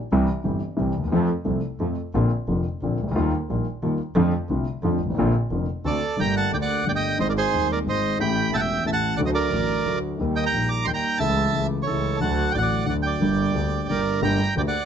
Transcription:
0.12 C2 C3 E3 G3 C4 G4
0.44 G1 G2 E3 G3 C4 G4
0.77 C2 C3 E3 G3 C4 G4
0.95 D2 D#2
1.03 D#2
1.08 E2
1.12 F2 F3 A3 C4 A4
1.45 C2 C3 F3 A3 C4 A4
1.80 F2 F3 A3 C4 A4
2.14 A#1 A#2 D3 A#3 C4 F4
2.48 F1 F2 D3 A#3 C4 F4
2.81 A#1 A#2 D3 A#3 C4 F4
2.99 C#2
3.04 C2 C#2
3.12 D2 F4
3.16 D#2 D#3 G3 A#3
3.49 A#1 A#2 D#3 G3 A#3 F4
3.83 D#2 D#3 G3 A#3 F4
4.15 F2 D3 F3 A3 C4 F4
4.49 C2 C3 D3 A3 C4 F4
4.83 F2 D3 F3 A3 C4 F4
4.99 G#1
5.05 G1
5.10 G#1
5.14 A1 A#1 A#3
5.19 A#1 A#2 D3 C4 F4
5.51 F1 F2 D3 A#3 C4 F4
5.85 D2 D3 A3 C4 F#4 A4 D5
6.17 G1 G2 D3 A3 A#3 G4 G5
6.21 A#5
6.36 F#5 A5
6.52 D2 D3 A3 A#3 G4 D5 G5
6.62 D5 F#5
6.84 G1 G2 D3 A3 A#3 G4
6.89 D5 G5
6.96 D#5 G5
7.17 G#1 G#2 D#3 G#3 C4 C5 D#5
7.21 G#4
7.29 A#4 D5
7.38 G#4 C5
7.51 D#1 D#2 D#3 G#3 C4
7.56 G#4
7.72 A#4 D5
7.84 G#1 G#2 D#3 G#3 C4 G#4
7.89 C5 D#5
8.18 A1 A2 E3 A3 C#4 G4 G5 B5
8.50 E1 E2 E3 A3 C#4 E5 A5
8.55 G4 F#5 G5
8.59 E5 G5
8.83 A1 A2 E3 A3 C#4 G4 A5
8.87 E5
8.93 F#5 A5
9.16 D2 D3 F#3 D5 F#5
9.21 A3 F#4
9.26 C5 D#5
9.34 A#4 D5
9.50 A1 A2 D3 F#3 F#4
9.85 D2 D3 F#3 A3 F#4
10.18 D#2 D#3 G3 A#3
10.22 G4
10.36 D#5 G5
10.46 G5 A#5
10.52 A#1 A#2 D#3 G3 A#3
10.57 G4
10.69 A#5 D6
10.84 D#2 D#3 G3 A#3 G5 C6
10.89 D#2 G4
10.94 G5 A#5
11.18 C#2 C#3 E3 A3 E5 A5
11.22 C#2 E4
11.52 C#2 C#3 E3 A3
11.56 C#2 E4
11.83 C#5
11.87 C#2 C#3 E3 A3 E4 A4
12.17 D3 F#3 A5
12.21 D2 A3 F#4 F#5
12.51 A1 A2 D3 F#3 A3 D5 G5
12.56 A1 F#4 F#5
12.62 D5
12.85 D2 D3 F#3 A3 F#5
12.89 F#4 D5
13.02 G5
13.07 D5
13.19 G1 G2 D3 G3 A#3
13.24 G4
13.53 D2 D3 G3 A#3
13.58 G4
13.87 G1 G2 D3 G3 A#4 D5
13.91 A#3 G4
14.21 G1 G2 D3 A3 A#3 G4 G5 A#5
14.56 D2 D3 A3 A#3 G4 D5 G5
14.67 D5 F#5

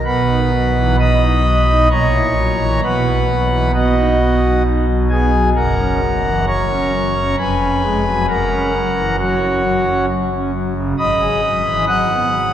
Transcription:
0.05 B1 B2 B4 F#5 B5
0.29 D#4
0.52 F#3
0.76 E3
0.99 F#3 D#5 B5 D#6
1.22 D#4
1.45 F#3
1.68 D#4
1.91 A#1 A#2 C#5 A#5 C#6
2.14 E4
2.37 F#3
2.60 E3
2.83 B1 B2 B4 F#5 B5
3.06 B3
3.29 F#3
3.52 E3
3.74 B3 F#4 D#5 F#5
3.97 D#4
4.19 B3
4.42 F#3
4.65 D#4
4.88 F#3
5.10 B3 G#4 G#5
5.33 F#3
5.55 F#1 F#2 A#4 F#5 A#5
5.78 C#4
6.01 F#3
6.24 E3
6.47 F#3 C#5 A#5 C#6
6.71 C#4
6.93 F#3
7.16 C#4
7.38 F1 F2 B4 G#5 B5
7.61 C#4
7.83 G#3
8.05 F#3
8.28 F#1 F#2 A#4 F#5 A#5
8.50 C#4
8.73 F#3
8.96 E3
9.18 F#3 F#4 C#5 F#5
9.41 C#4
9.64 F#3
9.87 C#4
10.09 F#3
10.31 C#4
10.54 F#3
10.77 C#3
10.98 G#1 G#2 D#5 B5 D#6
11.21 G#4
11.43 F#3
11.65 E3
11.87 F#3 F#5 D#6 F#6
12.10 B3
12.32 F#3

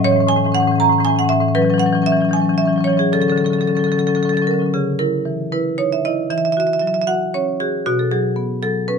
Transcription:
0.04 A2 E3 C#4 C#5
0.12 E3 C#4
0.16 A2
0.20 E3 C#4
0.27 A2 E3 C#4 G#5
0.36 A2 E3 C#4
0.44 A2 E3 C#4
0.52 E3 C#4 F#5
0.57 A2 C#4
0.63 E3
0.67 A2 E3 C#4
0.76 A2 C#4
0.80 E3 A#5
0.84 C#4
0.89 A2 E3 C#4
0.98 A2 E3 C#4
1.05 E3 C#4 G#5
1.10 A2
1.15 E3 C#4 F#5
1.20 A2 E3
1.24 C#4
1.29 A2 E3 C#4 E5
1.40 A2 E3 C#4
1.48 C#4
1.55 E3 F#3 C#4 B4
1.62 E3 F#3 C#4
1.70 E3 F#3 C#4
1.78 F#3 C#4 F#5
1.83 E3 F#3 C#4
1.93 E3 F#3 C#4
2.02 E3 F#3 C#4
2.06 C#4 E5
2.12 E3 F#3
2.17 F#3 C#4
2.22 E3 C#4
2.29 E3 F#3
2.33 F#3 C#4 G#5
2.40 E3 C#4
2.45 E3 F#3 C#4
2.54 E3 F#3 C#4 E5
2.62 F#3 C#4
2.68 E3 F#3
2.73 F#3 C#4
2.78 E3 C#4
2.84 E3 F#3 C#5
2.89 F#3 C#4
2.97 E3 F#3 C#4 G#4
3.12 D3 F#3 C#4 A4
3.20 D3 F#3 C#4 A4
3.28 F#3 C#4 A4
3.32 D3
3.36 F#3 C#4 A4
3.41 D3 F#3 C#4
3.46 A4
3.50 D3 F#3 C#4 A4
3.59 D3 F#3 C#4 A4
3.68 D3 F#3 C#4 A4
3.75 D3 C#4 A4
3.79 F#3
3.84 D3 C#4 A4
3.89 F#3 C#4 A4
3.97 D3 F#3 C#4 A4
4.06 D3 F#3 C#4 A4
4.15 D3 F#3 C#4 A4
4.23 D3 F#3 C#4 A4
4.29 C#4 A4
4.34 D3 F#3 A4
4.42 D3 F#3 C#4
4.47 C#4 A#4
4.51 D3 F#3
4.59 D3 F#3 C#4
4.66 C#4
4.74 C#3 G#4
4.99 E4 A#4
5.25 E3
5.52 E4 B4
5.78 D#4 C#5
5.92 E5
6.05 E4 D#5
6.30 E3 E5
6.38 E5
6.45 E5
6.52 E5
6.57 F#4 E5
6.67 E5
6.73 E5
6.79 F#3 E5
6.87 E5
6.94 E5
7.02 E5
7.07 F#4 F#5
7.34 C#4 C#5
7.60 F#4 G#4
7.86 B2 F#4
7.99 A4
8.11 F#3 G#4
8.36 B3
8.62 F#3 A4
8.88 C#4 B4

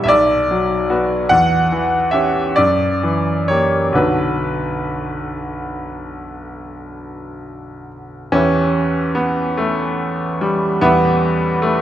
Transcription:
Already playing: B2 G3 B3 E4 E5
0.04 B1 E5
0.08 D5
0.51 F#3
0.90 B3 F#4
1.29 E2 F#5
1.72 E3
2.11 C#4 G4 E5
2.56 F#2 D5
3.03 E3
3.48 A#3 G4 C#5
3.92 B1 D3 B3 F#4 B4
8.32 E2 C#4 G4 B4 E5
9.15 B3
9.57 A3
10.41 G3
10.81 E2 B3 G4 B4 E5
11.62 A3

